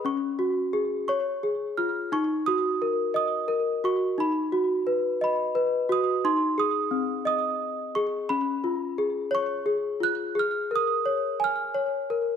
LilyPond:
\new Staff \with { instrumentName = "Celesta" } { \time 6/8 \key cis \mixolydian \tempo 4. = 58 << { cis'''4. cis'''4 eis'''8 | cis'''8 dis'''4 dis'''4 cis'''8 | b''4. b''4 dis'''8 | bis''8 dis'''4 dis'''4 cis'''8 |
b''4. cis'''4 fis'''8 | eis'''8 dis'''4 eis'''4 r8 | } \\ { cis'8 fis'8 gis'8 cis''8 gis'8 eis'8 | dis'8 fis'8 ais'8 dis''8 ais'8 fis'8 | dis'8 fis'8 b'8 dis''8 b'8 fis'8 | dis'8 gis'8 bis8 dis''4 gis'8 |
cis'8 eis'8 gis'8 cis''8 gis'8 eis'8 | gis'8 ais'8 cis''8 gis''8 cis''8 ais'8 | } >> }